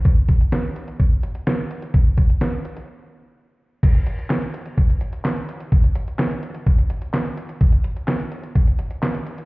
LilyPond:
\new DrumStaff \with { instrumentName = "Drums" } \drummode { \time 4/4 \tempo 4 = 127 <hh bd>8 <hh bd>16 hh16 <hh sn>8 hh16 hh16 <hh bd>8 hh16 hh16 <hh sn>8 hh16 hh16 | <hh bd>8 <hh bd>16 hh16 <hh sn>8 hh16 hh16 r4 r4 | <cymc hh bd>16 hh16 hh16 hh16 <hc hh sn>16 hh16 hh16 hh16 <hh bd>16 hh16 hh16 hh16 <hc hh sn>16 hh16 hh16 hh16 | <hh bd>16 hh16 hh16 hh16 <hc hh sn>16 hh16 hh16 hh16 <hh bd>16 hh16 hh16 hh16 <hc hh sn>16 hh16 hh16 hh16 |
<hh bd>16 hh16 hh16 hh16 <hc hh sn>16 hh16 hh16 hh16 <hh bd>16 hh16 hh16 hh16 <hc hh sn>16 hh16 hh16 hh16 | }